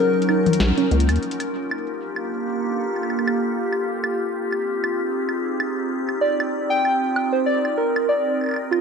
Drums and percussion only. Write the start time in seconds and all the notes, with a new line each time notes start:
0.22 closed hi-hat
0.29 high woodblock
0.46 closed hi-hat, high tom
0.53 closed hi-hat
0.60 snare
0.78 closed hi-hat
0.91 closed hi-hat
1.00 closed hi-hat
1.09 closed hi-hat, high woodblock
1.16 closed hi-hat
1.23 closed hi-hat
1.31 closed hi-hat
1.40 closed hi-hat, high woodblock
1.71 high woodblock
2.16 high woodblock
2.96 high woodblock
3.03 high woodblock
3.10 high woodblock
3.19 high woodblock
3.28 high woodblock
3.73 high woodblock
4.04 high woodblock
4.53 high woodblock
4.84 high woodblock
5.29 high woodblock
5.60 high woodblock
6.09 high woodblock
6.40 high woodblock
6.85 high woodblock
7.16 high woodblock
7.65 high woodblock
7.96 high woodblock
8.41 high woodblock
8.44 high woodblock
8.46 high woodblock
8.49 high woodblock
8.51 high woodblock
8.54 high woodblock
8.56 high woodblock
8.73 high woodblock